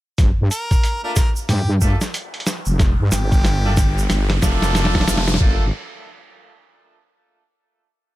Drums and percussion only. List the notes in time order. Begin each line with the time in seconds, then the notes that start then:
0.18 kick, snare, closed hi-hat, shaker
0.51 closed hi-hat, shaker
0.71 kick, closed hi-hat, shaker
0.84 closed hi-hat, shaker
1.16 kick, snare, closed hi-hat, shaker
1.36 shaker
1.49 snare, closed hi-hat, shaker
1.81 kick, shaker
2.01 snare, closed hi-hat, shaker
2.14 closed hi-hat, shaker
2.34 closed hi-hat
2.40 closed hi-hat
2.47 snare, closed hi-hat, shaker
2.66 shaker
2.79 kick, snare, closed hi-hat, shaker
3.12 snare, closed hi-hat, shaker
3.32 kick, closed hi-hat, shaker
3.45 snare, closed hi-hat, shaker
3.77 kick, snare, closed hi-hat, shaker
3.98 shaker
4.10 snare, closed hi-hat, shaker
4.30 snare, closed hi-hat
4.42 kick, snare, shaker
4.62 snare, closed hi-hat, shaker
4.75 snare, closed hi-hat, shaker
4.85 snare
4.95 kick, snare, closed hi-hat
5.01 snare, closed hi-hat
5.08 snare, closed hi-hat, shaker
5.17 snare
5.28 snare, shaker
5.34 snare
5.41 kick, crash